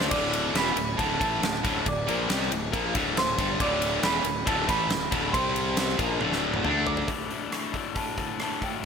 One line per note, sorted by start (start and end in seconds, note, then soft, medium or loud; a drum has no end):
0.00 0.11 D3 medium
0.00 0.11 A3 medium
0.00 0.11 D4 loud
0.00 snare loud
0.10 0.52 D1 medium
0.10 0.54 D2 loud
0.10 0.55 A2 loud
0.10 0.55 D3 loud
0.10 0.51 D5 medium
0.10 0.52 D6 loud
0.10 kick loud
0.10 crash medium
0.10 ride loud
0.33 ride medium
0.54 0.75 E1 loud
0.54 0.76 E2 medium
0.54 0.76 B2 medium
0.54 0.76 E3 medium
0.54 1.01 B5 loud
0.54 0.96 B6 medium
0.54 snare loud
0.54 ride loud
0.66 snare soft
0.76 0.97 D1 medium
0.76 0.94 D2 medium
0.76 0.94 A2 medium
0.76 ride medium
0.98 1.19 D1 medium
0.98 1.20 D2 medium
0.98 1.19 A2 medium
0.98 1.20 D3 loud
0.98 1.18 A5 medium
0.98 1.18 A6 medium
0.98 kick loud
0.98 ride loud
1.20 1.41 A1 medium
1.20 1.42 A2 medium
1.20 1.42 E3 loud
1.20 1.42 A3 loud
1.20 1.81 A5 medium
1.20 1.81 A6 medium
1.20 kick loud
1.20 ride medium
1.42 1.62 D1 medium
1.42 1.60 D2 medium
1.42 1.60 A2 medium
1.42 snare loud
1.42 ride medium
1.54 snare soft
1.63 1.84 D1 loud
1.63 1.83 D2 medium
1.63 1.84 A2 medium
1.63 1.85 D3 medium
1.63 kick loud
1.63 ride medium
1.85 2.06 D1 medium
1.85 2.02 D2 medium
1.85 2.03 A2 medium
1.85 2.48 D6 loud
1.85 kick loud
1.85 ride loud
1.89 2.48 D5 medium
2.08 2.29 A#1 loud
2.08 2.28 A#2 medium
2.08 2.29 F3 loud
2.08 2.29 A#3 loud
2.08 ride medium
2.29 2.50 C2 loud
2.29 2.50 C3 medium
2.29 2.50 G3 loud
2.29 2.51 C4 loud
2.29 snare loud
2.29 ride loud
2.41 snare soft
2.51 2.72 D1 medium
2.51 2.68 D2 medium
2.51 2.69 A2 medium
2.51 ride medium
2.72 2.93 A#1 medium
2.72 2.93 A#2 medium
2.72 2.93 F3 loud
2.72 2.94 A#3 loud
2.72 kick loud
2.72 ride loud
2.94 3.15 D1 medium
2.94 3.15 D2 loud
2.94 3.15 A2 medium
2.94 3.16 D3 loud
2.94 kick loud
2.94 ride medium
3.16 3.37 D1 medium
3.16 3.33 D2 medium
3.16 3.34 A2 medium
3.16 3.57 C5 medium
3.16 3.62 C6 loud
3.16 snare loud
3.16 ride loud
3.37 3.58 G1 loud
3.37 3.58 G2 medium
3.37 3.59 D3 medium
3.37 3.59 G3 medium
3.37 kick loud
3.37 ride medium
3.59 4.00 D1 medium
3.59 4.02 D2 loud
3.59 4.02 A2 loud
3.59 4.03 D3 loud
3.59 4.01 D5 medium
3.59 4.05 D6 loud
3.59 kick loud
3.59 ride loud
3.82 ride medium
4.03 4.23 E1 medium
4.03 4.23 E2 medium
4.03 4.24 B2 medium
4.03 4.24 E3 loud
4.03 4.44 B5 loud
4.03 4.44 B6 medium
4.03 snare loud
4.03 ride loud
4.24 4.45 D1 medium
4.24 4.42 D2 medium
4.24 4.42 A2 medium
4.24 ride medium
4.45 4.67 D1 loud
4.45 4.66 D2 loud
4.45 4.65 A2 loud
4.45 4.67 D3 medium
4.45 4.69 A5 medium
4.45 4.68 A6 medium
4.45 kick loud
4.45 ride loud
4.67 4.89 A1 loud
4.67 4.89 A2 loud
4.67 4.89 E3 loud
4.67 4.89 A3 loud
4.67 5.36 B5 medium
4.67 5.31 B6 medium
4.67 kick loud
4.67 ride medium
4.90 5.10 D1 medium
4.90 5.07 D2 medium
4.90 5.08 A2 medium
4.90 snare loud
4.90 ride medium
5.11 5.32 D1 loud
5.11 5.33 D2 medium
5.11 5.33 A2 medium
5.11 5.33 D3 medium
5.11 kick loud
5.11 ride medium
5.33 5.95 C2 medium
5.33 5.97 C3 medium
5.33 5.98 G3 loud
5.33 5.98 C4 loud
5.33 5.95 C5 medium
5.33 5.95 C6 medium
5.33 kick loud
5.33 ride loud
5.56 ride medium
5.77 snare loud
5.77 ride loud
5.89 snare soft
5.98 6.19 A#1 medium
5.98 6.20 A#2 medium
5.98 6.20 F3 loud
5.98 6.20 A#3 loud
5.98 kick loud
5.98 ride medium
6.20 6.62 D1 medium
6.20 6.64 D2 medium
6.20 6.64 A2 medium
6.20 6.63 D3 loud
6.20 high tom medium
6.33 snare medium
6.54 mid tom medium
6.64 7.06 D2 medium
6.64 7.07 D3 medium
6.64 7.07 A3 medium
6.64 7.08 D4 loud
6.64 mid tom medium
6.87 7.92 D6 loud
6.87 floor tom loud
6.97 floor tom loud
7.07 7.28 D2 medium
7.07 7.29 A2 medium
7.07 7.29 D3 medium
7.07 kick medium
7.07 open hi-hat medium
7.29 7.49 D2 medium
7.29 7.50 A2 medium
7.29 7.51 D3 medium
7.29 open hi-hat soft
7.51 7.72 D2 medium
7.51 7.73 A2 medium
7.51 7.73 D3 medium
7.51 7.95 A3 medium
7.51 cross-stick medium
7.51 open hi-hat medium
7.73 7.95 D2 medium
7.73 7.95 A2 medium
7.73 7.95 D3 medium
7.73 kick medium
7.73 open hi-hat soft
7.96 8.16 D2 medium
7.96 8.17 A2 medium
7.96 8.18 D3 medium
7.96 8.61 A3 medium
7.96 8.41 A5 medium
7.96 kick medium
7.96 open hi-hat medium
8.18 8.39 D2 medium
8.18 8.39 A2 medium
8.18 8.40 D3 medium
8.18 kick medium
8.18 open hi-hat soft
8.40 8.61 D2 medium
8.40 8.61 A2 medium
8.40 8.62 D3 medium
8.40 8.62 A5 medium
8.40 cross-stick medium
8.40 open hi-hat soft
8.62 8.82 D2 medium
8.62 8.83 A2 medium
8.62 8.83 D3 medium
8.62 8.85 A3 medium
8.62 8.85 G5 medium
8.62 kick medium
8.62 open hi-hat soft